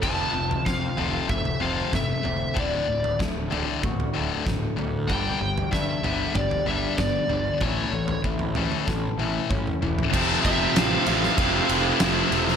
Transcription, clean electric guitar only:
0, 0, Header, 1, 2, 480
1, 0, Start_track
1, 0, Tempo, 629591
1, 26, Time_signature, 4, 2, 24, 8
1, 9579, End_track
2, 0, Start_track
2, 0, Title_t, "Clean electric guitar"
2, 0, Program_c, 0, 27
2, 28, Note_on_c, 0, 41, 66
2, 261, Note_on_c, 0, 53, 59
2, 503, Note_on_c, 0, 60, 62
2, 745, Note_on_c, 0, 57, 62
2, 1218, Note_off_c, 0, 60, 0
2, 1227, Note_on_c, 0, 60, 69
2, 1233, Note_off_c, 0, 41, 0
2, 1460, Note_off_c, 0, 57, 0
2, 1469, Note_on_c, 0, 57, 65
2, 1470, Note_off_c, 0, 53, 0
2, 1707, Note_off_c, 0, 60, 0
2, 1716, Note_on_c, 0, 60, 59
2, 1953, Note_off_c, 0, 57, 0
2, 1956, Note_off_c, 0, 60, 0
2, 1956, Note_on_c, 0, 38, 72
2, 2202, Note_on_c, 0, 45, 60
2, 2443, Note_on_c, 0, 57, 62
2, 2682, Note_on_c, 0, 50, 67
2, 2928, Note_on_c, 0, 66, 73
2, 3155, Note_off_c, 0, 57, 0
2, 3160, Note_off_c, 0, 38, 0
2, 3164, Note_on_c, 0, 57, 64
2, 3391, Note_off_c, 0, 50, 0
2, 3401, Note_on_c, 0, 50, 69
2, 3403, Note_off_c, 0, 45, 0
2, 3636, Note_off_c, 0, 57, 0
2, 3645, Note_on_c, 0, 57, 64
2, 3882, Note_off_c, 0, 50, 0
2, 3884, Note_off_c, 0, 57, 0
2, 3886, Note_off_c, 0, 66, 0
2, 3887, Note_on_c, 0, 43, 72
2, 4124, Note_on_c, 0, 55, 60
2, 4368, Note_on_c, 0, 62, 61
2, 4608, Note_on_c, 0, 59, 65
2, 4847, Note_on_c, 0, 67, 82
2, 5080, Note_off_c, 0, 62, 0
2, 5086, Note_off_c, 0, 43, 0
2, 5090, Note_on_c, 0, 62, 67
2, 5324, Note_off_c, 0, 59, 0
2, 5325, Note_off_c, 0, 55, 0
2, 5333, Note_on_c, 0, 59, 66
2, 5560, Note_off_c, 0, 62, 0
2, 5569, Note_on_c, 0, 62, 65
2, 5801, Note_on_c, 0, 45, 71
2, 5805, Note_off_c, 0, 67, 0
2, 5806, Note_off_c, 0, 62, 0
2, 5808, Note_off_c, 0, 59, 0
2, 6039, Note_on_c, 0, 57, 64
2, 6273, Note_on_c, 0, 64, 61
2, 6523, Note_on_c, 0, 61, 65
2, 6764, Note_on_c, 0, 69, 77
2, 6989, Note_off_c, 0, 64, 0
2, 6999, Note_on_c, 0, 64, 63
2, 7000, Note_off_c, 0, 45, 0
2, 7230, Note_off_c, 0, 61, 0
2, 7239, Note_off_c, 0, 57, 0
2, 7239, Note_on_c, 0, 61, 66
2, 7471, Note_off_c, 0, 64, 0
2, 7480, Note_on_c, 0, 64, 68
2, 7718, Note_off_c, 0, 61, 0
2, 7719, Note_off_c, 0, 64, 0
2, 7720, Note_off_c, 0, 69, 0
2, 9579, End_track
0, 0, End_of_file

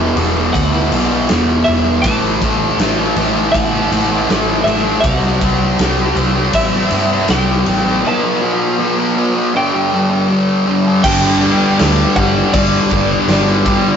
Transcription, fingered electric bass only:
0, 0, Header, 1, 2, 480
1, 0, Start_track
1, 0, Key_signature, 1, "major"
1, 0, Tempo, 750000
1, 1304, Time_signature, 4, 2, 24, 8
1, 8938, End_track
2, 0, Start_track
2, 0, Title_t, "Fingered electric bass"
2, 0, Program_c, 0, 33
2, 0, Note_on_c, 0, 28, 85
2, 89, Note_off_c, 0, 28, 0
2, 102, Note_on_c, 0, 28, 100
2, 327, Note_off_c, 0, 28, 0
2, 346, Note_on_c, 0, 38, 84
2, 568, Note_off_c, 0, 38, 0
2, 579, Note_on_c, 0, 35, 94
2, 805, Note_off_c, 0, 35, 0
2, 831, Note_on_c, 0, 28, 87
2, 1051, Note_off_c, 0, 28, 0
2, 1073, Note_on_c, 0, 28, 94
2, 1292, Note_off_c, 0, 28, 0
2, 1312, Note_on_c, 0, 33, 86
2, 1532, Note_off_c, 0, 33, 0
2, 1546, Note_on_c, 0, 33, 95
2, 1768, Note_off_c, 0, 33, 0
2, 1787, Note_on_c, 0, 33, 89
2, 2009, Note_off_c, 0, 33, 0
2, 2026, Note_on_c, 0, 33, 101
2, 2248, Note_off_c, 0, 33, 0
2, 2273, Note_on_c, 0, 33, 89
2, 2492, Note_off_c, 0, 33, 0
2, 2506, Note_on_c, 0, 33, 93
2, 2728, Note_off_c, 0, 33, 0
2, 2752, Note_on_c, 0, 33, 95
2, 2971, Note_off_c, 0, 33, 0
2, 2986, Note_on_c, 0, 33, 92
2, 3208, Note_off_c, 0, 33, 0
2, 3227, Note_on_c, 0, 36, 94
2, 3449, Note_off_c, 0, 36, 0
2, 3469, Note_on_c, 0, 36, 90
2, 3690, Note_off_c, 0, 36, 0
2, 3705, Note_on_c, 0, 36, 97
2, 3928, Note_off_c, 0, 36, 0
2, 3941, Note_on_c, 0, 36, 94
2, 4166, Note_off_c, 0, 36, 0
2, 4183, Note_on_c, 0, 33, 85
2, 4407, Note_off_c, 0, 33, 0
2, 4421, Note_on_c, 0, 43, 94
2, 4646, Note_off_c, 0, 43, 0
2, 4665, Note_on_c, 0, 36, 99
2, 4888, Note_off_c, 0, 36, 0
2, 4911, Note_on_c, 0, 33, 86
2, 5131, Note_off_c, 0, 33, 0
2, 7069, Note_on_c, 0, 31, 90
2, 7377, Note_off_c, 0, 31, 0
2, 7553, Note_on_c, 0, 38, 96
2, 7705, Note_off_c, 0, 38, 0
2, 7782, Note_on_c, 0, 31, 97
2, 7938, Note_off_c, 0, 31, 0
2, 8027, Note_on_c, 0, 31, 85
2, 8181, Note_off_c, 0, 31, 0
2, 8266, Note_on_c, 0, 31, 98
2, 8420, Note_off_c, 0, 31, 0
2, 8499, Note_on_c, 0, 31, 95
2, 8809, Note_off_c, 0, 31, 0
2, 8938, End_track
0, 0, End_of_file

